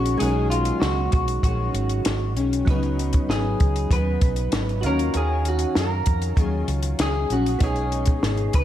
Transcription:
Already playing: A#1 D#3 G#3 B3 C#4 D#4 F#4
0.06 closed hi-hat
0.17 B1 B2 D#3 G#3 C#4 D#4 G#4, closed hi-hat
0.22 F#3 G#3 C#4
0.50 F4, closed hi-hat
0.65 closed hi-hat
0.80 C#2 F#4, snare, closed hi-hat
1.12 B1 F#4, kick, closed hi-hat
1.28 closed hi-hat
1.43 A#1 D#3 G#3 C#4 F#4, kick, closed hi-hat
1.74 G#1, closed hi-hat
1.89 closed hi-hat
2.05 G#1, snare, closed hi-hat
2.36 B1 D#3 G#3 C#4, closed hi-hat
2.53 closed hi-hat
2.65 C#2 C#3 F#3 C#4 D#4, kick, closed hi-hat
2.70 B3 D#4 B4
2.83 closed hi-hat
2.99 closed hi-hat
3.13 kick, closed hi-hat
3.29 G#1 G#4, snare, closed hi-hat
3.60 C#2, kick, closed hi-hat
3.76 closed hi-hat
3.90 D#2 C#3 F#3 B3 B4, kick, closed hi-hat
3.95 D#4
4.21 B1, kick, closed hi-hat
4.36 closed hi-hat
4.52 G#1, snare, closed hi-hat
4.69 closed hi-hat
4.81 D#2 C#4 D#4 F4 F#4 F5, closed hi-hat
4.86 F#3 A#4 C#5
4.99 closed hi-hat
5.13 D#2 D#3 G#4, closed hi-hat
5.18 C#4
5.45 F#4, closed hi-hat
5.59 closed hi-hat
5.75 F#2 A#4, snare, closed hi-hat
6.06 F2, kick, closed hi-hat
6.22 closed hi-hat
6.36 D#2 D#3 F#3 C#4 F4, kick, closed hi-hat
6.41 G#4
6.68 C#2, closed hi-hat
6.83 closed hi-hat
6.99 C#2 G#4, snare, closed hi-hat
7.30 A#1 F#3 C#4 F#4, closed hi-hat
7.46 closed hi-hat
7.59 B1 B2 G#3 B3 D#4 G#4, kick, closed hi-hat
7.63 C#4 D#4 G#4 C#5
7.76 closed hi-hat
7.92 closed hi-hat
8.06 kick, closed hi-hat
8.23 G#1, snare, closed hi-hat
8.37 closed hi-hat
8.53 C#2 B4, kick, closed hi-hat

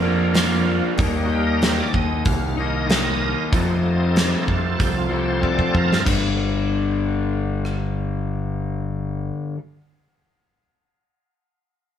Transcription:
Already playing: F2 F3 A#3 A#4
0.02 F3 A#3 D4
0.07 A#2
0.33 A#2 F3 A#3, snare, open hi-hat
0.39 A#3
0.66 D4
0.97 D#2 D#3 G3 A#3 D#4, kick, open hi-hat
1.02 D#4
1.25 F#4
1.30 G4
1.47 A#4
1.62 C5, snare, open hi-hat
1.79 D5
1.93 D#2 D#5, kick
2.25 C2 F5, kick, open hi-hat
2.57 D#3 A#3 D#4 A#4 D#5
2.86 D#3 A#3, open hi-hat
2.90 D#4, snare
3.50 F2 C3 F3 C4 A4, kick, open hi-hat
4.16 snare, open hi-hat
4.48 F2, kick
4.76 C2 F#4, kick, open hi-hat
4.81 G4
4.97 F4
5.09 F2 C3 F3
5.14 G4
5.28 C5
5.39 F2 C3 F3
5.43 D5, kick
5.59 kick
5.74 F2 A#4, kick
5.91 G2, snare
6.04 G1 G2 D3 G3, kick, crash
7.65 cross-stick

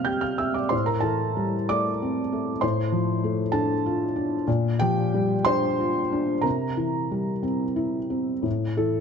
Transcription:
Already playing: C3 G3 A#3 C4 E5 F5 E6 F6
0.05 G4 G5 G6
0.21 F5 F6
0.38 C4 E5 E6
0.54 D5 D6
0.69 A2 C5 C6
0.86 A#4 A#5
1.00 E3 A4 A5
1.37 G3
1.69 A3 D5 D6
2.02 C4
2.32 A3
2.61 A2 C5 C6
2.92 F3
3.24 A3
3.52 D4 A4 A5
3.86 F4
4.16 D4
4.47 A#2
4.79 F3 G4 G5
5.14 G3
5.45 D4 C5 C6
5.80 F4
6.12 D4
6.41 C3 A#4 A#5
6.77 E3
7.11 G3
7.43 C4
7.76 E4
8.10 C4
8.43 A2
8.77 E3 A4

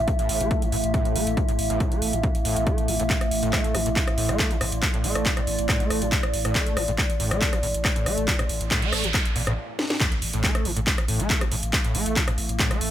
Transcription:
Already playing: A2 E5
0.08 kick, closed hi-hat
0.19 A1 A2, closed hi-hat
0.29 A1, open hi-hat
0.41 A1 A3, closed hi-hat
0.51 kick, closed hi-hat
0.62 A1 E3, closed hi-hat
0.72 A1 A2, open hi-hat
0.84 A1, closed hi-hat
0.94 A2, kick, closed hi-hat
1.05 A1, closed hi-hat
1.15 A1 A3, open hi-hat
1.27 A1, closed hi-hat
1.37 E3, kick, closed hi-hat
1.48 A1 A2, closed hi-hat
1.59 A1, open hi-hat
1.70 A1 A2, closed hi-hat
1.80 kick, closed hi-hat
1.92 A1 A3, closed hi-hat
2.02 A1, open hi-hat
2.13 A1 E3, closed hi-hat
2.23 A2, kick, closed hi-hat
2.35 A1, closed hi-hat
2.45 A1 A2, open hi-hat
2.56 A1, closed hi-hat
2.67 A3, kick, closed hi-hat
2.78 A1, closed hi-hat
2.88 A1 E3, open hi-hat
3.00 A1 A2, closed hi-hat
3.10 A2, kick, clap, closed hi-hat
3.21 A1, cross-stick, closed hi-hat
3.31 A1, open hi-hat
3.43 A1 A2, closed hi-hat
3.53 A3, kick, cross-stick, clap, closed hi-hat
3.64 A1, closed hi-hat
3.74 A1 E3, cross-stick, open hi-hat
3.86 A1 A2, closed hi-hat
3.96 kick, clap, closed hi-hat
4.08 A1, cross-stick, closed hi-hat
4.16 A1 A2 D5, open hi-hat
4.29 A1 A3, cross-stick, closed hi-hat
4.39 kick, clap, closed hi-hat
4.51 A1 E3, closed hi-hat
4.61 A1 A2, cross-stick, open hi-hat
4.72 A1, closed hi-hat
4.82 kick, cross-stick, clap, closed hi-hat
4.94 A1 A2, closed hi-hat
5.04 A1 A3, open hi-hat
5.15 A1, cross-stick, closed hi-hat
5.26 E3, kick, clap, closed hi-hat
5.37 A1 A2, cross-stick, closed hi-hat
5.47 A1, open hi-hat
5.59 A1, closed hi-hat
5.69 A2, kick, cross-stick, clap, closed hi-hat
5.80 A1 A3, closed hi-hat
5.90 A1, cross-stick, open hi-hat
6.02 A1 E3, closed hi-hat
6.12 A2, kick, clap, closed hi-hat
6.23 A1, cross-stick, closed hi-hat
6.34 A1, open hi-hat
6.45 A1 A2, cross-stick, closed hi-hat
6.55 A3, kick, clap, closed hi-hat
6.66 A1, closed hi-hat
6.77 A1 E3, cross-stick, open hi-hat
6.88 A1 A2, closed hi-hat
6.98 kick, cross-stick, clap, closed hi-hat
7.10 A1, closed hi-hat
7.20 A1 A2, open hi-hat
7.31 A1 A3, cross-stick, closed hi-hat
7.41 kick, clap, closed hi-hat
7.53 A1 E3, cross-stick, closed hi-hat
7.63 A1 A2, open hi-hat
7.74 A1, closed hi-hat
7.85 kick, cross-stick, clap, closed hi-hat
7.96 A1 A2, closed hi-hat
8.06 A1 A3, cross-stick, open hi-hat
8.18 A1, closed hi-hat
8.28 E3, kick, clap, closed hi-hat, noise sweep
8.39 A1 A2, cross-stick, closed hi-hat
8.49 A1, open hi-hat
8.61 A1, closed hi-hat
8.71 A2, kick, clap, closed hi-hat
8.82 A1 A3, closed hi-hat
8.93 A1, cross-stick, open hi-hat
9.04 A1 E3, closed hi-hat
9.14 A2, kick, cross-stick, clap, closed hi-hat
9.25 A1, closed hi-hat
9.36 A1 A#2, open hi-hat
9.47 A1 A2, cross-stick, closed hi-hat
9.79 snare
9.90 snare
10.00 A2, kick, clap, closed hi-hat, impact
10.12 A1, closed hi-hat
10.22 A1, open hi-hat
10.33 A1 A2, closed hi-hat
10.44 A3, kick, clap, closed hi-hat
10.55 A1, cross-stick, closed hi-hat
10.65 A1 E3, open hi-hat
10.77 A1 A2, closed hi-hat
10.87 kick, clap, closed hi-hat
10.98 A1, cross-stick, closed hi-hat
11.08 A1 A2, open hi-hat
11.20 A1 A3, closed hi-hat
11.30 kick, clap, closed hi-hat
11.41 A1 E3, cross-stick, closed hi-hat
11.51 A1 A2, open hi-hat
11.63 A1, closed hi-hat
11.73 kick, clap, closed hi-hat
11.84 A1 A2, closed hi-hat
11.95 A1 A3, open hi-hat
12.06 A1, closed hi-hat
12.16 E3, kick, clap, closed hi-hat
12.28 A1 A2, cross-stick, closed hi-hat
12.38 A1, open hi-hat
12.49 A1, closed hi-hat
12.59 A2, kick, clap, closed hi-hat
12.71 A1 A3, cross-stick, closed hi-hat
12.81 A1, open hi-hat

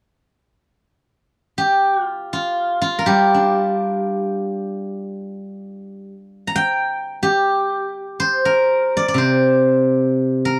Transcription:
1.58 G4
2.04 F4
2.33 F4
2.82 F4
2.99 A#4
3.06 G3 G4
3.34 D4
6.47 A#5
6.56 G5
7.23 G4
8.20 C5
8.45 A#4
8.97 D5
9.08 D5
9.14 C3 C5
10.45 A#4

